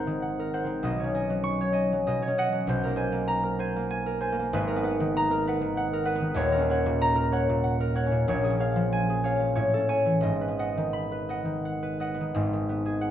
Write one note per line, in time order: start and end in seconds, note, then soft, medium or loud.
0.00 0.89 G#1 medium
0.00 0.89 G#2 medium
0.00 0.63 C4 soft
0.00 0.38 A#4 medium
0.00 0.53 C5 medium
0.00 0.21 F#5 soft
0.00 0.89 A#5 medium
0.07 0.65 D#3 medium
0.22 0.53 F#5 medium
0.39 0.88 A#4 medium
0.54 0.88 C5 medium
0.54 2.37 F#5 medium
0.64 0.87 D#3 soft
0.64 0.88 C4 medium
0.83 2.10 B1 medium
0.83 2.06 B2 medium
0.83 1.14 D#5 medium
1.00 1.60 C#5 soft
1.04 2.26 C#4 medium
1.15 1.71 D#5 soft
1.15 1.72 G#5 medium
1.30 1.91 F#3 medium
1.44 4.53 C#6 medium
1.61 2.21 C#5 medium
1.72 2.06 D#5 medium
1.72 2.96 G#5 medium
1.92 2.51 F#3 medium
2.07 2.67 B2 medium
2.07 2.37 D#5 medium
2.22 4.54 C#5 medium
2.28 4.54 C#4 medium
2.38 2.71 D#5 medium
2.38 2.71 F#5 medium
2.53 2.71 F#3 medium
2.67 4.54 B1 medium
2.67 4.55 B2 medium
2.67 2.95 C5 medium
2.84 3.11 A#3 medium
2.84 3.42 A#4 medium
2.96 3.58 C5 medium
2.96 3.58 G#5 medium
3.12 3.75 A#3 medium
3.28 5.15 A#5 loud
3.43 4.05 A#4 medium
3.59 4.20 C5 medium
3.59 3.89 G#5 medium
3.76 4.31 A#3 medium
3.90 4.20 G#5 medium
4.06 4.66 A#4 medium
4.21 4.54 C5 medium
4.21 6.41 G#5 medium
4.32 4.38 A#3 medium
4.39 8.29 A#3 medium
4.53 6.42 G#1 medium
4.53 6.42 G#2 medium
4.53 4.82 B4 medium
4.68 5.30 A#4 medium
4.76 6.14 B3 medium
4.83 5.47 B4 medium
4.83 5.47 F#5 medium
5.00 5.60 D#3 medium
5.17 7.00 A#5 loud
5.31 5.92 A#4 medium
5.47 6.04 B4 medium
5.47 5.76 F#5 medium
5.61 6.20 D#3 medium
5.77 6.05 F#5 medium
5.93 6.51 A#4 medium
6.05 6.40 B4 medium
6.05 6.70 F#5 medium
6.15 6.40 B3 medium
6.21 6.40 D#3 medium
6.34 8.29 D#1 medium
6.34 8.29 D#2 medium
6.34 6.69 C#5 medium
6.52 7.15 A#4 medium
6.58 8.05 C#4 medium
6.70 7.31 C#5 medium
6.70 7.32 F#5 medium
6.86 7.48 A#2 medium
7.01 9.60 A#5 loud
7.16 7.79 A#4 medium
7.32 7.94 C#5 medium
7.32 7.63 F#5 medium
7.49 8.10 A#2 medium
7.64 7.95 F#5 medium
7.80 9.60 A#4 medium
7.95 8.28 C#5 medium
7.95 8.31 F#5 medium
8.06 8.49 C#4 medium
8.12 8.27 A#2 medium
8.28 9.59 A#1 medium
8.28 9.60 A#2 medium
8.28 8.58 C#5 medium
8.44 9.09 G#4 medium
8.50 9.77 C#4 medium
8.59 9.23 C#5 medium
8.59 9.24 F5 medium
8.76 9.39 F3 medium
8.93 9.88 G#5 medium
9.10 12.84 G#4 medium
9.24 9.54 C#5 medium
9.24 9.60 F5 medium
9.40 9.60 F3 medium
9.55 10.28 A2 medium
9.55 9.87 C#5 medium
9.74 10.29 A4 medium
9.78 10.28 C#4 medium
9.89 10.28 C#5 medium
9.89 13.11 G#5 medium
10.06 10.27 E3 soft
10.21 12.33 G#1 medium
10.21 12.34 G#2 medium
10.21 10.58 D#5 medium
10.41 11.11 B4 medium
10.48 12.13 B3 medium
10.59 11.28 D#5 medium
10.59 11.29 F#5 medium
10.77 11.44 D#3 medium
10.93 13.11 B5 medium
11.12 11.81 B4 medium
11.29 11.99 D#5 soft
11.29 11.64 F#5 medium
11.45 12.19 D#3 soft
11.65 12.00 F#5 medium
11.83 13.11 B4 medium
12.00 13.11 D#5 medium
12.00 13.00 F#5 medium
12.14 12.68 B3 medium
12.20 12.40 D#3 soft
12.34 13.11 G#1 medium
12.34 13.11 G#2 medium
12.53 13.11 D#3 medium
12.69 13.11 B3 medium
12.86 13.11 G#4 medium
13.01 13.11 F#5 medium